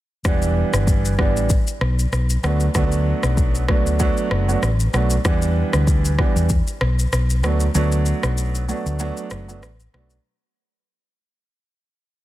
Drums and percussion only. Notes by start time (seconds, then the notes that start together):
0.25 kick, cross-stick, shaker
0.42 shaker
0.74 cross-stick, shaker
0.87 kick, shaker
1.05 shaker
1.19 kick, cross-stick
1.37 shaker
1.50 kick, shaker
1.67 shaker
1.81 cross-stick
1.99 shaker
2.13 cross-stick, shaker
2.30 shaker
2.44 cross-stick, shaker
2.60 shaker
2.75 kick, cross-stick, shaker
2.92 shaker
3.23 cross-stick, shaker
3.37 kick, shaker
3.55 shaker
3.68 kick, cross-stick
3.87 shaker
4.00 kick, shaker
4.17 shaker
4.31 cross-stick
4.49 shaker
4.63 cross-stick, shaker
4.80 shaker
4.94 cross-stick, shaker
5.10 shaker
5.25 kick, cross-stick, shaker
5.42 shaker
5.73 cross-stick, shaker
5.87 kick, shaker
6.05 shaker
6.19 kick, cross-stick
6.37 shaker
6.50 kick, shaker
6.67 shaker
6.81 cross-stick
6.99 shaker
7.13 cross-stick, shaker
7.30 shaker
7.44 cross-stick, shaker
7.60 shaker
7.75 shaker
7.92 shaker
8.06 shaker
8.23 cross-stick, shaker
8.38 shaker
8.55 shaker
8.69 shaker
8.87 shaker
8.99 shaker
9.17 shaker
9.31 cross-stick, shaker
9.49 shaker
9.63 cross-stick, shaker
9.80 shaker
9.94 cross-stick
10.10 shaker